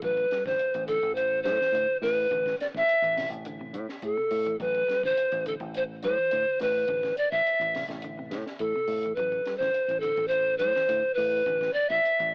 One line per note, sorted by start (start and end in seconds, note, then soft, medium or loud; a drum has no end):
0.02 0.26 A1 loud
0.02 0.28 F#3 medium
0.02 0.44 B4 medium
0.02 kick medium
0.02 closed hi-hat medium
0.17 kick medium
0.17 closed hi-hat soft
0.31 0.45 G3 medium
0.31 snare soft
0.31 closed hi-hat soft
0.45 0.57 A1 medium
0.45 0.71 D3 medium
0.45 0.86 C5 medium
0.45 kick medium
0.45 snare soft
0.59 muted fingered electric bass stroke soft
0.59 closed hi-hat medium
0.74 0.98 A1 loud
0.74 0.87 E3 medium
0.74 closed hi-hat soft
0.87 1.01 D3 medium
0.87 1.14 A4 medium
0.87 closed hi-hat medium
1.03 1.47 A1 medium
1.03 1.28 E3 medium
1.03 kick medium
1.03 closed hi-hat soft
1.15 1.42 C5 medium
1.15 closed hi-hat medium
1.43 1.57 A2 medium
1.43 1.58 F#3 medium
1.43 1.97 C5 loud
1.43 snare soft
1.43 closed hi-hat medium
1.61 1.72 E3 medium
1.61 snare soft
1.72 1.85 A2 medium
1.72 1.99 D3 medium
1.72 closed hi-hat medium
2.02 2.25 A2 medium
2.02 2.28 E3 medium
2.02 2.56 B4 loud
2.02 snare soft
2.02 open hi-hat medium
2.31 2.54 A1 loud
2.31 2.56 D3 medium
2.31 kick loud
2.31 closed hi-hat medium
2.46 kick medium
2.46 snare soft
2.46 closed hi-hat soft
2.59 2.67 D5 medium
2.59 muted fingered electric bass stroke soft
2.59 snare soft
2.59 closed hi-hat medium
2.74 2.86 A1 medium
2.74 3.29 E5 loud
2.74 kick medium
2.74 snare soft
2.89 closed hi-hat medium
3.02 3.26 A1 medium
3.02 3.16 E3 medium
3.02 closed hi-hat soft
3.17 3.42 C3 medium
3.17 snare soft
3.17 open hi-hat medium
3.30 3.75 A1 medium
3.30 closed hi-hat soft
3.45 3.59 D3 medium
3.45 closed hi-hat medium
3.61 3.85 C3 medium
3.73 3.86 A2 medium
3.73 closed hi-hat medium
3.89 snare soft
4.02 4.15 A2 medium
4.02 4.57 A4 medium
4.02 kick medium
4.02 closed hi-hat medium
4.17 4.42 C3 medium
4.31 4.54 A2 medium
4.31 open hi-hat medium
4.46 4.58 E3 medium
4.46 closed hi-hat soft
4.60 4.83 A1 medium
4.60 4.85 F#3 medium
4.60 5.06 B4 loud
4.60 kick medium
4.60 closed hi-hat medium
4.75 kick medium
4.75 closed hi-hat soft
4.88 5.01 G3 medium
4.88 muted fingered electric bass stroke soft
4.88 snare soft
4.88 closed hi-hat soft
5.03 5.15 A1 medium
5.03 5.28 D3 medium
5.03 5.46 C5 loud
5.03 kick medium
5.17 closed hi-hat medium
5.32 5.55 A1 loud
5.32 5.44 E3 medium
5.32 closed hi-hat soft
5.46 5.59 D3 medium
5.46 5.54 A4 medium
5.46 closed hi-hat medium
5.60 6.05 A1 medium
5.60 5.85 E3 medium
5.60 kick medium
5.60 closed hi-hat soft
5.74 5.83 C5 medium
5.74 closed hi-hat medium
6.03 6.15 A2 medium
6.03 6.16 F#3 medium
6.03 6.63 C5 loud
6.03 closed hi-hat medium
6.18 6.30 E3 medium
6.31 6.44 A2 medium
6.31 6.57 D3 medium
6.31 closed hi-hat medium
6.60 6.84 A2 medium
6.60 6.85 E3 medium
6.60 7.19 B4 loud
6.60 snare soft
6.60 open hi-hat medium
6.88 7.12 A1 medium
6.88 7.14 D3 medium
6.88 kick medium
6.88 closed hi-hat medium
7.03 kick medium
7.03 snare soft
7.03 closed hi-hat soft
7.17 7.31 D5 loud
7.17 muted fingered electric bass stroke soft
7.17 closed hi-hat medium
7.31 7.43 A1 medium
7.31 7.85 E5 loud
7.31 kick medium
7.47 closed hi-hat medium
7.59 7.83 A1 medium
7.59 7.73 E3 medium
7.59 closed hi-hat soft
7.75 8.00 C3 medium
7.75 snare soft
7.75 open hi-hat medium
7.88 8.32 A1 medium
7.88 snare soft
7.88 closed hi-hat soft
8.02 8.17 D3 medium
8.02 closed hi-hat medium
8.19 8.43 C3 medium
8.31 8.43 A2 medium
8.31 snare soft
8.31 closed hi-hat medium
8.47 snare soft
8.59 8.72 A2 medium
8.59 8.74 E3 medium
8.59 9.17 A4 medium
8.59 kick medium
8.59 closed hi-hat medium
8.76 9.00 C3 medium
8.88 9.11 A2 medium
8.88 open hi-hat medium
9.03 9.17 E3 medium
9.03 closed hi-hat soft
9.15 9.40 A1 medium
9.15 9.57 B4 medium
9.15 kick medium
9.15 closed hi-hat medium
9.19 9.43 F#3 medium
9.32 kick medium
9.32 closed hi-hat soft
9.46 9.60 G3 medium
9.46 muted fingered electric bass stroke soft
9.46 snare soft
9.46 closed hi-hat soft
9.57 9.72 A1 medium
9.57 10.02 C5 medium
9.57 kick medium
9.61 9.86 D3 medium
9.61 snare soft
9.74 muted fingered electric bass stroke soft
9.74 closed hi-hat medium
9.88 10.12 A1 medium
9.88 10.02 E3 medium
9.88 closed hi-hat soft
10.00 10.29 A4 medium
10.00 closed hi-hat soft
10.04 10.17 D3 medium
10.17 10.62 A1 medium
10.17 10.43 E3 medium
10.17 kick medium
10.17 closed hi-hat soft
10.28 10.57 C5 loud
10.28 closed hi-hat medium
10.58 10.72 A2 medium
10.58 10.74 F#3 medium
10.58 11.16 C5 loud
10.58 closed hi-hat medium
10.76 10.88 E3 medium
10.76 snare soft
10.89 11.01 A2 medium
10.89 11.14 D3 medium
10.89 closed hi-hat medium
11.14 11.41 A2 medium
11.14 11.75 B4 loud
11.14 open hi-hat medium
11.19 11.43 E3 medium
11.46 11.69 A1 loud
11.46 11.72 D3 medium
11.46 kick medium
11.46 closed hi-hat medium
11.61 kick medium
11.61 snare soft
11.61 closed hi-hat soft
11.73 11.91 D5 loud
11.73 muted fingered electric bass stroke soft
11.73 closed hi-hat medium
11.90 12.01 A1 medium
11.90 12.35 E5 loud
11.90 kick medium
12.05 closed hi-hat medium
12.20 12.35 A1 loud
12.20 12.31 E3 medium
12.20 closed hi-hat soft